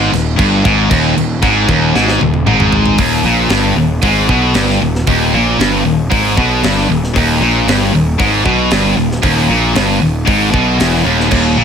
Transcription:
Already playing: G#2
0.12 D#1 D#2, snare, crash
0.36 G1 G2, kick, crash
0.63 G#1 G#2, kick, crash
0.89 D#1 D#2, kick, crash
1.16 D#1 D#2, crash
1.42 G#1 G#2, kick, crash
1.69 D#1 D#2, kick, crash
1.94 G#1 G#2, snare
2.08 snare
2.21 D#1 D#2, high tom
2.34 high tom
2.46 G#1 G#2, mid tom
2.60 mid tom
2.72 floor tom
2.86 floor tom
2.98 D#1 D#2, kick, open hi-hat
3.23 A#1 A#2
3.48 G1 G2, snare, open hi-hat
3.75 D#1 D#2
4.02 G#1 G#2, kick, open hi-hat
4.29 B1 B2, kick
4.54 G1 G2, snare, open hi-hat
4.70 snare
4.81 D#1 D#2
4.95 snare
5.07 D#1 D#2, kick, open hi-hat
5.33 A#1 A#2
5.58 G1 G2, snare, open hi-hat
5.85 D#1 D#2
6.11 G#1 G#2, kick, open hi-hat
6.37 B1 B2, kick
6.63 G1 G2, snare, open hi-hat
6.78 snare
6.89 D#1 D#2
7.04 snare
7.14 D#1 D#2, kick, open hi-hat
7.41 A#1 A#2
7.67 G1 G2, snare, open hi-hat
7.93 D#1 D#2
8.19 G#1 G#2, kick, open hi-hat
8.45 B1 B2, kick
8.71 G1 G2, snare, open hi-hat
8.97 D#1 D#2
9.11 snare
9.22 D#1 D#2, kick, open hi-hat
9.48 A#1 A#2
9.73 G1 G2, snare, open hi-hat
9.99 D#1 D#2
10.25 G#1 G#2, kick, open hi-hat
10.51 B1 B2, kick
10.77 E1 E2, open hi-hat
10.81 snare
10.94 snare
11.03 D#1 D#2
11.20 snare
11.30 D#1 D#2, kick, crash
11.56 A#1 A#2

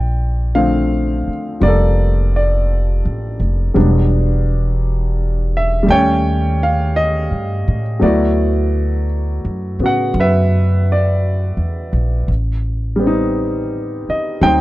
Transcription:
Already playing: A#1 F4 D5 G5
0.55 D3 F3 A3 C4 F5
1.28 muted upright bass stroke
1.60 F1 F3 G3 A#3 D5
1.68 A4
2.36 D5
3.05 A1
3.40 F1
3.74 E1 F#3 G3 B3 D4
5.57 E5
5.83 G3 A3
5.88 D#2 C#5 G5
5.94 C#4
6.63 F5
6.96 D#5
7.31 G2
7.68 A2
8.00 D2 F#3 A3 B3 D5
8.04 E4 F#4
9.45 F#2
9.79 A2 C#3 B3
9.83 F#4 F#5
10.14 F#2
10.20 B4 E5
10.92 D5
11.57 E2
11.93 A#1
12.28 A1
12.96 G3 B3
13.03 C4 D#4
14.09 D#5, muted upright bass stroke
14.41 D2 F#3 C4 D#4 G5
14.46 C5

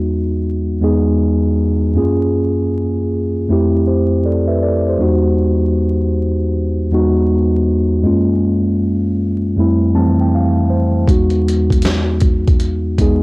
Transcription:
Already playing: E2 G#3 B3 D#4 F#4
0.80 E2 G#3 B3 D#4 G#4
1.94 F#2 A#3 C#4 F4 G#4
3.48 F2 A3 C4 E4 G4
3.87 G4 C5
4.25 A4 D5
4.48 B4 E5
4.63 A4 D5
4.88 G4 C5
4.98 E2 G#3 B3 D#4 F#4
6.91 E2 G#3 B3 D#4 F#4
8.03 F#2 G#3 A#3 C#4 F4
9.56 F2 G3 A3 C4 E4
9.94 F2 E3 G3 A3 C4 A5
10.21 G5
10.35 F5
10.70 C5
11.07 E2 G#3 B3 D#4 F#4, kick, closed hi-hat
11.30 closed hi-hat
11.48 closed hi-hat
11.70 kick, closed hi-hat
11.82 snare, closed hi-hat
12.21 kick, closed hi-hat
12.48 kick, closed hi-hat
12.60 closed hi-hat
12.98 E2 G#3 B3 D#4 G#4, kick, closed hi-hat

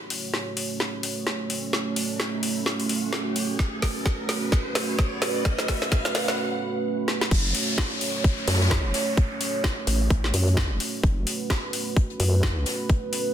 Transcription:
Already playing: A3 C#4 F#4 C#5, riser
0.10 open hi-hat
0.34 snare
0.57 open hi-hat
0.80 snare
1.03 open hi-hat
1.27 snare
1.50 open hi-hat
1.73 snare
1.96 open hi-hat
2.20 snare
2.43 open hi-hat
2.66 snare
2.80 open hi-hat
2.89 open hi-hat
3.13 snare
3.36 open hi-hat
3.59 B4, kick, snare
3.82 kick, snare, open hi-hat
4.06 kick, snare
4.29 snare, open hi-hat
4.52 kick, snare
4.75 snare, open hi-hat
4.99 kick, snare
5.22 snare, open hi-hat
5.45 kick, snare
5.59 snare
5.68 kick, snare, open hi-hat
5.82 snare
5.92 kick, snare
6.05 snare
6.15 snare, open hi-hat
6.28 snare
7.08 snare
7.21 snare
7.31 F#1 A3 C#4 F#4 C#5, kick, closed hi-hat, crash, downlifter
7.55 closed hi-hat, open hi-hat
7.78 kick, snare, closed hi-hat
8.01 closed hi-hat, open hi-hat
8.24 kick, closed hi-hat
8.37 closed hi-hat
8.48 F#2, snare, closed hi-hat, open hi-hat
8.54 snare, closed hi-hat
8.61 snare, closed hi-hat
8.65 snare, closed hi-hat
8.70 kick, snare
8.94 snare, closed hi-hat, open hi-hat
9.17 kick, closed hi-hat
9.41 closed hi-hat, open hi-hat
9.64 kick, snare, closed hi-hat
9.87 A1, closed hi-hat, open hi-hat
10.10 A1, kick, closed hi-hat
10.24 snare
10.34 F#2, closed hi-hat, open hi-hat
10.47 closed hi-hat
10.57 kick, snare, closed hi-hat
10.80 closed hi-hat, open hi-hat
11.03 F#1 B4, kick, closed hi-hat
11.27 closed hi-hat, open hi-hat
11.50 kick, snare, closed hi-hat
11.73 closed hi-hat, open hi-hat
11.96 kick, closed hi-hat
12.10 closed hi-hat
12.20 F#2, closed hi-hat, open hi-hat
12.43 kick, snare, closed hi-hat
12.66 snare, closed hi-hat, open hi-hat
12.89 kick, closed hi-hat
13.12 closed hi-hat, open hi-hat

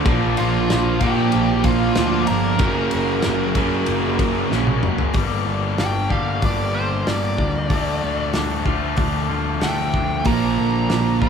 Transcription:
0.05 A#1 A#2 F3 A#3 D4, kick, ride
0.37 A#1 F4 F5, ride
0.70 A#1, snare, ride
1.00 A#2 F3 A#3 D4 G4 G5, kick, ride
1.32 A#1, ride
1.64 F4 F5, kick, ride
1.95 D2 A#2 F3 A#3 D4, snare, ride
2.27 G1 A#4 A#5, ride
2.59 F#1 F#2 C#3 F#3 A#3, kick, ride
2.63 C#4
2.91 F#1, ride
3.22 snare, ride
3.26 F#1
3.55 F#2 C#3 F#3 A#3 C#4, kick, ride
3.86 F#1, ride
4.19 kick, ride
4.50 A#1 F#2 C#3 F#3 A#3 C#4, snare
4.67 high tom
4.83 F#1, mid tom
4.98 floor tom
5.13 G1 G2 D3 G3 A#3 D4, kick, open hi-hat
5.46 G1 G3
5.78 G1 D4 G5, snare, open hi-hat
6.09 G1 G2 D3 G3 A#3 D4 G4 F5, kick
6.42 G1 D4 D5, kick, open hi-hat
6.74 G4 C5
7.05 G1 A#3 D5, snare, open hi-hat
7.37 D2 D4, kick
7.69 D2 D3 F3 A3 D4, kick, open hi-hat
8.02 D2 D3
8.33 D2 D4, snare, open hi-hat
8.66 D3 F3 A3 D4 F4, kick
8.96 D2 D4, kick, open hi-hat
9.30 D2 F4
9.61 D2 A3 G5, snare, open hi-hat
9.93 D2 D4, kick
10.25 A#1 A#2 F3 A#3 D4 A#5, kick, open hi-hat
10.57 A#1 D3
10.89 A#1 D4, snare, open hi-hat
11.21 A#1 A#2 F3 A#3 D4 F4 C6, kick

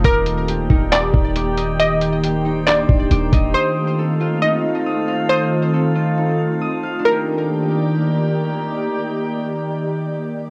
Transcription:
0.04 D#1 D#3 A#3 D#4 G4 A#4 D5 G5 D6, kick, closed hi-hat
0.26 closed hi-hat
0.48 G4, closed hi-hat
0.70 D#1 D#4, kick
0.92 A#3 D5, clap, closed hi-hat
1.14 D#1, kick
1.36 D6, closed hi-hat
1.58 D#5, closed hi-hat
1.80 C5 D#5 D6, closed hi-hat
2.01 closed hi-hat
2.23 G4, closed hi-hat
2.45 D#4
2.67 D4 D5, clap, closed hi-hat
2.89 D1, kick
3.11 D#1 D6, closed hi-hat
3.33 D#1 D#5, kick, closed hi-hat
3.54 D#3 A3 C4 F4 A4 C5 F5 D#6
3.99 A4
4.21 F4
4.42 D#4 D#5
4.86 D#6
5.08 F5
5.29 C5 D#6
5.74 A4
5.95 F4
6.18 D#4
6.61 D#6
6.83 F5
6.99 D4
7.05 D#3 A#3 D#4 G4 A#4 D5 G5
7.11 G4

